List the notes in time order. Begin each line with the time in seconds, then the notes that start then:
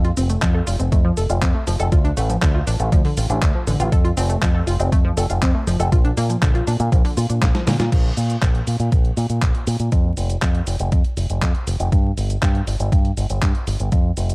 Already playing: F2
0.05 F4, closed hi-hat
0.17 F1 C4, open hi-hat, cabasa
0.29 A3, closed hi-hat, cabasa
0.42 F2 F3, kick, clap, closed hi-hat, cabasa
0.54 A4
0.67 F1 F4, open hi-hat, cabasa
0.79 F1 C4, closed hi-hat, cabasa
0.92 F2 A3, kick, closed hi-hat, cabasa
1.05 F3
1.17 F1 A4, open hi-hat, cabasa
1.29 F1 F4, closed hi-hat, cabasa
1.42 F2 C4, kick, clap, closed hi-hat, cabasa
1.55 A3
1.67 F1 F3, open hi-hat, cabasa
1.80 F1 A4, closed hi-hat, cabasa
1.92 D2 F4, kick, closed hi-hat, cabasa
2.05 D4, closed hi-hat
2.17 A1 A3, open hi-hat, cabasa
2.30 F3, closed hi-hat, cabasa
2.42 D2 D3, kick, clap, closed hi-hat, cabasa
2.55 F4
2.67 A1 D4, open hi-hat, cabasa
2.80 A1 A3, closed hi-hat, cabasa
2.92 D2 F3, kick, closed hi-hat, cabasa
3.05 D3, open hi-hat
3.17 A1 F4, open hi-hat, cabasa
3.30 A1 D4, closed hi-hat, cabasa
3.42 D2 A3, kick, clap, closed hi-hat, cabasa
3.55 F3
3.67 A1 D3, open hi-hat, cabasa
3.80 A1 F4, closed hi-hat, cabasa
3.92 F2 A4, kick, closed hi-hat, cabasa
4.05 F4, closed hi-hat
4.17 F1 C4, open hi-hat, cabasa
4.30 A3, closed hi-hat, cabasa
4.42 F2 F3, kick, clap, closed hi-hat, cabasa
4.54 A4
4.67 F1 F4, open hi-hat, cabasa
4.79 F1 C4, closed hi-hat, cabasa
4.92 F2 A3, kick, closed hi-hat, cabasa
5.05 F3
5.17 F1 A4, open hi-hat, cabasa
5.30 F1 F4, closed hi-hat, cabasa
5.42 F2 C4, kick, clap, closed hi-hat, cabasa
5.55 A3
5.67 F1 F3, open hi-hat, cabasa
5.80 F1 A4, closed hi-hat, cabasa
5.92 A#1 F4, kick, closed hi-hat, cabasa
6.05 D4, closed hi-hat
6.17 A#2 A#3, open hi-hat, cabasa
6.30 F3, closed hi-hat, cabasa
6.42 A#1 D3, kick, clap, closed hi-hat, cabasa
6.55 F4, closed hi-hat
6.67 A#2 D4, open hi-hat, cabasa
6.80 A#2 A#3, closed hi-hat, cabasa
6.92 A#1 F3, kick, closed hi-hat, cabasa
7.05 D3, open hi-hat
7.17 A#2 F4, open hi-hat, cabasa
7.29 A#2 D4, closed hi-hat, cabasa
7.42 A#1 A#3, kick, snare, clap, closed hi-hat, cabasa
7.55 F3, snare, closed hi-hat
7.67 A#2 D3, snare, open hi-hat, cabasa
7.79 A#2 F4, snare, closed hi-hat, cabasa
7.92 A#1, kick, closed hi-hat, crash, cabasa
8.17 A#2, open hi-hat, cabasa
8.30 closed hi-hat, cabasa
8.42 A#1, kick, clap, closed hi-hat, cabasa
8.55 closed hi-hat
8.67 A#2, open hi-hat, cabasa
8.80 A#2, closed hi-hat, cabasa
8.92 A#1, kick, closed hi-hat, cabasa
9.05 closed hi-hat
9.17 A#2, open hi-hat, cabasa
9.30 A#2, closed hi-hat, cabasa
9.42 A#1, kick, clap, closed hi-hat, cabasa
9.55 closed hi-hat
9.67 A#2, open hi-hat, cabasa
9.80 A#2, closed hi-hat, cabasa
9.92 F2, kick, closed hi-hat, cabasa
10.17 F1, open hi-hat, cabasa
10.30 closed hi-hat, cabasa
10.42 F2, kick, clap, closed hi-hat, cabasa
10.55 closed hi-hat
10.67 F1, open hi-hat, cabasa
10.80 F1, closed hi-hat, cabasa
10.92 F2, kick, closed hi-hat, cabasa
11.04 closed hi-hat
11.17 F1, open hi-hat, cabasa
11.30 F1, closed hi-hat, cabasa
11.42 F2, kick, clap, closed hi-hat, cabasa
11.55 closed hi-hat
11.67 F1, open hi-hat, cabasa
11.80 F1, closed hi-hat, cabasa
11.92 G2, kick, closed hi-hat, cabasa
12.17 G1, open hi-hat, cabasa
12.30 closed hi-hat, cabasa
12.42 G2, kick, clap, closed hi-hat, cabasa
12.55 closed hi-hat
12.67 G1, open hi-hat, cabasa
12.80 G1, closed hi-hat, cabasa
12.92 G2, kick, closed hi-hat, cabasa
13.05 closed hi-hat
13.17 G1, open hi-hat, cabasa
13.30 G1, closed hi-hat, cabasa
13.42 G2, kick, clap, closed hi-hat, cabasa
13.55 closed hi-hat
13.67 G1, open hi-hat, cabasa
13.80 G1, closed hi-hat, cabasa
13.92 F2, kick, closed hi-hat, cabasa
14.17 F1, open hi-hat, cabasa
14.30 closed hi-hat, cabasa